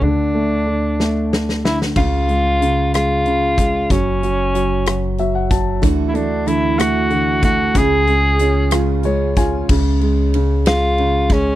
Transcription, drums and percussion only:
1.00 snare soft
1.33 snare medium
1.49 snare medium
1.65 snare medium
1.82 snare medium
1.96 kick medium
1.96 crash medium
2.29 closed hi-hat soft
2.62 closed hi-hat medium
2.94 cross-stick medium
2.94 closed hi-hat medium
3.26 closed hi-hat soft
3.58 kick medium
3.58 closed hi-hat medium
3.90 kick medium
3.90 closed hi-hat medium
4.23 closed hi-hat soft
4.55 closed hi-hat medium
4.86 cross-stick loud
4.86 closed hi-hat medium
5.18 closed hi-hat soft
5.51 kick medium
5.51 closed hi-hat medium
5.83 kick medium
5.83 closed hi-hat medium
6.15 closed hi-hat soft
6.47 closed hi-hat medium
6.79 cross-stick loud
6.79 closed hi-hat medium
7.10 closed hi-hat soft
7.42 kick medium
7.42 closed hi-hat medium
7.75 kick medium
7.75 closed hi-hat medium
8.07 closed hi-hat soft
8.39 closed hi-hat medium
8.71 cross-stick medium
8.71 closed hi-hat medium
9.03 closed hi-hat soft
9.36 kick medium
9.36 closed hi-hat medium
9.69 kick medium
9.69 crash medium
10.01 ride soft
10.34 ride medium
10.66 snare loud
10.66 ride medium
10.98 ride soft
11.30 kick medium
11.30 ride medium

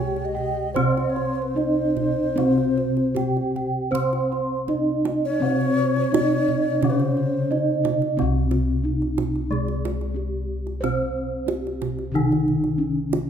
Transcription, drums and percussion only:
0.16 kendang slap soft
0.36 kendang low soft
0.76 kendang high medium
0.76 kendang low medium
0.97 kendang slap soft
1.16 kendang slap soft
1.57 kendang slap soft
1.97 kendang slap soft
1.97 kendang low medium
2.38 kendang high soft
2.58 kendang slap soft
2.78 kendang slap soft
2.97 kendang slap soft
3.16 kendang slap soft
3.16 kendang high medium
3.16 kendang low medium
3.37 kendang slap soft
3.56 kendang low soft
3.95 kendang low medium
4.13 kendang slap soft
4.32 kendang slap soft
4.68 kendang slap soft
4.68 kendang low medium
5.05 kendang slap soft
5.05 kendang high medium
5.61 kendang slap soft
5.79 kendang slap soft
5.96 kendang slap soft
6.14 kendang slap soft
6.14 kendang high medium
6.14 kendang low medium
6.32 kendang slap soft
6.48 kendang low medium
6.82 kendang high medium
6.82 kendang low medium
7.00 kendang slap soft
7.17 kendang slap soft
7.52 kendang slap soft
7.85 kendang slap soft
7.85 kendang high medium
7.85 kendang low medium
8.02 kendang slap soft
8.19 kendang high soft
8.19 kendang low medium
8.51 kendang high soft
9.02 kendang slap soft
9.18 kendang high medium
9.18 kendang low medium
9.35 kendang slap soft
9.52 kendang low medium
9.68 kendang slap soft
9.85 kendang high medium
9.85 kendang low soft
10.01 kendang slap soft
10.67 kendang slap soft
10.84 kendang high soft
10.84 kendang low medium
11.48 kendang high medium
11.67 kendang slap soft
11.82 kendang high medium
11.82 kendang low medium
11.99 kendang slap soft
12.16 kendang low medium
12.32 kendang slap soft
12.48 kendang low medium
12.64 kendang slap soft
13.13 kendang high medium

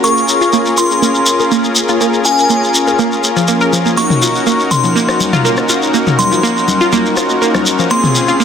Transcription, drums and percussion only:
0.04 shekere soft
0.17 shekere soft
0.28 shekere medium
0.41 shekere soft
0.53 shekere soft
0.66 shekere soft
0.78 shekere medium
0.91 shekere soft
1.03 shekere soft
1.15 shekere soft
1.26 shekere medium
1.40 shekere soft
1.52 shekere medium
1.64 shekere soft
1.76 shekere medium
1.88 shekere soft
2.01 shekere medium
2.14 shekere soft
2.25 shekere medium
2.38 shekere soft
2.49 shekere medium
2.64 shekere soft
2.74 shekere medium
2.87 shekere soft
2.99 shekere soft
3.12 shekere soft
3.24 shekere medium
3.37 shekere soft
3.48 shekere medium
3.61 shekere soft
3.73 shekere medium
3.86 shekere soft
3.97 shekere soft
4.10 mid tom medium
4.10 shekere soft
4.22 shekere medium
4.35 shekere soft
4.47 shekere soft
4.60 shekere soft
4.71 mid tom medium
4.71 shekere medium
4.83 shekere soft
4.96 shekere soft
5.09 cross-stick medium
5.09 shekere soft
5.20 high conga medium
5.20 shekere medium
5.33 mid tom medium
5.33 high conga medium
5.33 shekere soft
5.45 shekere soft
5.57 cross-stick medium
5.57 shekere soft
5.69 shekere medium
5.82 shekere soft
5.94 shekere medium
6.07 mid tom medium
6.07 shekere soft
6.19 high conga medium
6.19 shekere medium
6.32 shekere soft
6.44 shekere soft
6.57 shekere soft
6.68 high conga medium
6.68 shekere medium
6.81 shekere soft
6.92 high conga medium
6.92 shekere soft
7.06 shekere soft
7.17 cross-stick medium
7.17 shekere medium
7.30 shekere soft
7.42 shekere soft
7.54 cross-stick soft
7.54 high conga medium
7.54 shekere soft
7.66 shekere medium
7.79 shekere soft
7.90 shekere soft
8.04 mid tom medium
8.04 shekere soft
8.15 shekere medium
8.28 shekere soft
8.41 shekere soft

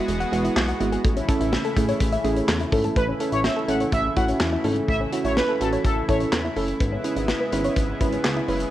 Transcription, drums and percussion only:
0.08 closed hi-hat medium
0.21 closed hi-hat soft
0.33 closed hi-hat medium
0.45 closed hi-hat medium
0.57 snare loud
0.57 clap loud
0.69 closed hi-hat medium
0.81 closed hi-hat medium
0.92 closed hi-hat medium
1.05 kick loud
1.05 closed hi-hat medium
1.17 closed hi-hat medium
1.28 kick loud
1.28 closed hi-hat medium
1.41 closed hi-hat medium
1.53 snare loud
1.64 closed hi-hat soft
1.76 kick medium
1.76 closed hi-hat medium
1.89 closed hi-hat medium
2.00 kick loud
2.00 closed hi-hat medium
2.12 closed hi-hat medium
2.25 closed hi-hat medium
2.36 closed hi-hat medium
2.48 snare loud
2.48 clap loud
2.60 closed hi-hat medium
2.72 kick loud
2.72 open hi-hat medium
2.84 closed hi-hat medium
2.96 kick loud
2.96 closed hi-hat medium
3.20 closed hi-hat medium
3.32 closed hi-hat medium
3.44 snare loud
3.69 closed hi-hat medium
3.80 closed hi-hat medium
3.92 kick loud
3.92 closed hi-hat medium
4.16 kick loud
4.16 closed hi-hat medium
4.28 closed hi-hat medium
4.40 snare loud
4.40 clap loud
4.64 open hi-hat medium
4.76 closed hi-hat medium
4.88 kick loud
4.88 closed hi-hat medium
5.12 closed hi-hat medium
5.25 closed hi-hat medium
5.37 snare loud
5.61 closed hi-hat medium
5.72 closed hi-hat medium
5.84 kick loud
5.84 closed hi-hat medium
6.09 kick medium
6.09 closed hi-hat medium
6.20 closed hi-hat medium
6.32 snare loud
6.32 clap loud
6.56 open hi-hat medium
6.68 closed hi-hat medium
6.80 kick loud
6.80 closed hi-hat medium
7.04 closed hi-hat medium
7.17 closed hi-hat medium
7.28 snare loud
7.53 closed hi-hat medium
7.64 closed hi-hat medium
7.76 kick loud
7.76 closed hi-hat medium
8.01 kick medium
8.01 closed hi-hat medium
8.12 closed hi-hat medium
8.24 snare loud
8.24 clap loud
8.48 open hi-hat medium
8.60 closed hi-hat medium

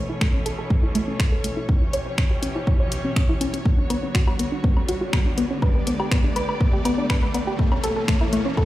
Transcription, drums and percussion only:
0.21 finger snap loud
0.21 kick loud
0.46 closed hi-hat loud
0.70 kick loud
0.95 closed hi-hat loud
1.20 finger snap loud
1.20 kick loud
1.44 closed hi-hat loud
1.69 kick loud
1.93 closed hi-hat loud
1.93 low conga medium
2.18 finger snap loud
2.18 kick loud
2.43 closed hi-hat loud
2.55 low conga medium
2.67 kick loud
2.92 closed hi-hat loud
3.16 finger snap loud
3.16 kick loud
3.41 closed hi-hat loud
3.54 closed hi-hat medium
3.65 kick loud
3.90 closed hi-hat loud
3.90 low conga medium
3.90 low woodblock medium
4.15 finger snap loud
4.15 kick loud
4.28 low woodblock medium
4.39 closed hi-hat loud
4.64 kick loud
4.77 low woodblock medium
4.89 closed hi-hat loud
5.13 finger snap loud
5.13 kick loud
5.13 low woodblock medium
5.38 closed hi-hat loud
5.62 kick loud
5.62 low woodblock medium
5.87 closed hi-hat loud
5.87 low conga medium
6.00 low woodblock medium
6.11 finger snap loud
6.11 kick loud
6.36 closed hi-hat loud
6.49 low woodblock medium
6.61 kick loud
6.85 closed hi-hat loud
6.85 low woodblock medium
7.10 finger snap loud
7.10 kick loud
7.34 closed hi-hat loud
7.34 low woodblock medium
7.59 kick loud
7.72 low woodblock medium
7.84 closed hi-hat loud
7.84 low conga medium
8.08 finger snap loud
8.08 kick loud
8.21 low woodblock medium
8.33 closed hi-hat loud
8.57 kick loud
8.57 low woodblock medium

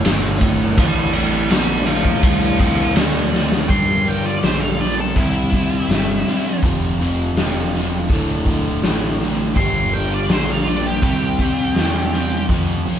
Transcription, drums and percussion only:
0.05 snare loud
0.05 ride loud
0.41 kick medium
0.41 ride medium
0.78 kick loud
0.78 ride medium
1.13 ride medium
1.51 snare loud
1.51 ride medium
1.86 ride medium
2.05 kick medium
2.23 kick loud
2.23 ride medium
2.60 kick medium
2.60 ride medium
2.96 snare loud
2.96 ride medium
3.34 snare medium
3.52 snare medium
3.69 kick loud
3.69 open hi-hat medium
4.07 open hi-hat soft
4.43 snare loud
4.43 open hi-hat medium
4.80 open hi-hat soft
5.16 kick loud
5.16 open hi-hat medium
5.52 kick medium
5.52 open hi-hat soft
5.90 snare medium
5.90 open hi-hat medium
6.26 open hi-hat soft
6.62 kick loud
6.62 open hi-hat medium
7.00 open hi-hat soft
7.36 snare loud
7.36 open hi-hat medium
7.74 open hi-hat soft
8.09 kick loud
8.09 open hi-hat medium
8.46 kick medium
8.46 open hi-hat soft
8.83 snare loud
8.83 open hi-hat medium
9.20 open hi-hat soft
9.55 kick loud
9.55 open hi-hat medium
9.93 open hi-hat medium
10.29 snare loud
10.29 open hi-hat medium
10.66 open hi-hat soft
11.02 kick loud
11.02 open hi-hat medium
11.39 kick medium
11.39 open hi-hat soft
11.75 snare medium
11.75 open hi-hat medium
12.13 open hi-hat soft
12.49 kick loud
12.49 open hi-hat medium
12.86 open hi-hat soft

